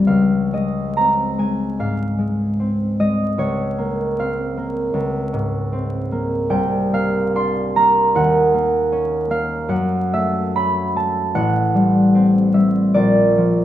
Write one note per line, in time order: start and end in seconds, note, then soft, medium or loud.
0.00 0.12 A#1 soft
0.00 0.12 F2 soft
0.00 0.12 G3 soft
0.00 0.12 A3 soft
0.00 0.96 C4 soft
0.00 0.12 A#4 medium
0.00 1.42 C5 medium
0.07 3.37 C#2 soft
0.07 1.79 F5 medium
0.53 1.38 G#3 soft
0.53 2.99 D#5 medium
0.97 2.58 C4 soft
0.97 1.68 A#5 medium
1.38 2.17 G#3 soft
1.38 5.29 G#5 medium
1.79 3.42 G#2 soft
1.79 4.18 F5 medium
2.18 2.99 G#3 soft
2.60 4.18 C4 soft
3.00 6.54 G#3 soft
3.00 6.90 D#5 medium
3.38 4.92 C#2 soft
3.38 6.54 C#5 medium
3.78 4.56 A#3 soft
4.19 5.71 C4 soft
4.19 6.55 F5 medium
4.57 6.11 A#3 soft
4.94 6.53 C#2 soft
5.33 6.54 G#2 soft
5.73 8.19 C4 soft
6.12 6.92 A#3 soft
6.50 8.18 C2 medium
6.50 8.19 G5 medium
6.93 7.75 A#3 soft
6.93 9.29 F5 medium
7.35 8.18 D4 medium
7.35 8.18 C6 medium
7.76 8.53 A#3 soft
7.76 9.74 A#5 medium
8.15 9.74 D#2 medium
8.15 9.68 F#5 medium
8.54 9.29 A#3 soft
8.92 10.55 C#4 soft
9.30 9.74 A#3 soft
9.30 9.74 F5 medium
9.69 11.38 F#2 medium
9.69 11.34 F#5 medium
10.13 10.95 A3 soft
10.13 12.53 E5 medium
10.56 11.39 C#4 soft
10.56 11.24 B5 medium
10.96 13.65 A3 soft
10.96 13.65 A5 medium
11.35 12.99 A1 medium
11.35 13.44 F#5 loud
11.75 12.53 G3 soft
12.15 12.99 C4 soft
12.54 12.99 G3 soft
12.54 12.99 E5 medium
12.94 13.65 A#1 medium
12.94 13.65 D5 medium
13.38 13.65 F3 soft